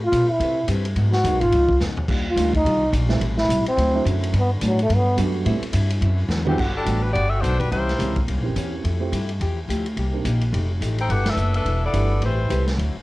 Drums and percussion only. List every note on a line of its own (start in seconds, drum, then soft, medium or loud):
0.12 kick soft
0.12 hi-hat pedal medium
0.12 ride medium
0.40 kick soft
0.40 ride medium
0.68 kick soft
0.68 hi-hat pedal medium
0.68 ride medium
0.85 ride medium
0.96 kick soft
0.96 ride medium
1.13 snare medium
1.24 kick soft
1.24 hi-hat pedal medium
1.24 ride medium
1.41 ride medium
1.52 kick soft
1.52 ride medium
1.69 kick medium
1.80 snare medium
1.80 hi-hat pedal medium
1.97 floor tom medium
2.08 kick medium
2.08 crash medium
2.36 kick soft
2.36 hi-hat pedal medium
2.36 ride medium
2.53 kick medium
2.53 ride medium
2.65 kick soft
2.65 ride medium
2.93 kick soft
2.93 hi-hat pedal medium
2.93 ride medium
3.09 snare soft
3.21 kick soft
3.21 ride medium
3.38 snare medium
3.49 kick soft
3.49 hi-hat pedal medium
3.49 ride medium
3.66 ride medium
3.78 kick soft
3.78 ride medium
4.06 kick soft
4.06 hi-hat pedal medium
4.06 ride medium
4.23 ride medium
4.33 kick soft
4.33 ride medium
4.61 kick soft
4.61 hi-hat pedal medium
4.61 ride medium
4.79 ride medium
4.89 kick soft
4.89 ride medium
5.17 kick soft
5.17 hi-hat pedal medium
5.17 ride medium
5.45 kick soft
5.45 ride medium
5.63 ride medium
5.73 kick soft
5.73 hi-hat pedal medium
5.73 ride medium
5.90 ride medium
6.02 kick soft
6.02 ride medium
6.30 snare medium
6.30 hi-hat pedal medium
6.47 high tom medium
6.58 kick medium
6.58 crash medium
6.86 kick soft
6.86 hi-hat pedal medium
6.86 ride medium
7.15 kick soft
7.15 ride medium
7.43 kick soft
7.43 hi-hat pedal medium
7.43 ride medium
7.60 kick medium
7.60 ride medium
7.72 kick soft
7.72 ride medium
7.89 snare soft
7.89 ride soft
7.99 kick soft
7.99 hi-hat pedal medium
7.99 ride medium
8.16 kick medium
8.16 ride soft
8.28 kick soft
8.28 ride medium
8.56 kick soft
8.56 hi-hat pedal medium
8.56 ride medium
8.84 kick soft
8.84 ride medium
9.13 kick soft
9.13 hi-hat pedal medium
9.13 ride medium
9.29 ride soft
9.41 kick soft
9.41 ride medium
9.69 kick soft
9.69 hi-hat pedal medium
9.69 ride medium
9.86 ride soft
9.97 kick soft
9.97 ride medium
10.25 kick soft
10.25 hi-hat pedal medium
10.25 ride medium
10.41 ride soft
10.53 kick soft
10.53 ride medium
10.81 kick soft
10.81 hi-hat pedal medium
10.81 ride medium
10.98 ride medium
11.09 kick soft
11.09 ride medium
11.26 snare medium
11.26 ride medium
11.37 hi-hat pedal medium
11.54 ride soft
11.65 kick soft
11.65 ride medium
11.93 kick soft
11.93 hi-hat pedal medium
11.93 ride medium
12.22 kick soft
12.22 ride medium
12.50 kick soft
12.50 hi-hat pedal medium
12.50 ride medium
12.67 snare medium
12.67 ride soft
12.78 kick soft
12.78 ride medium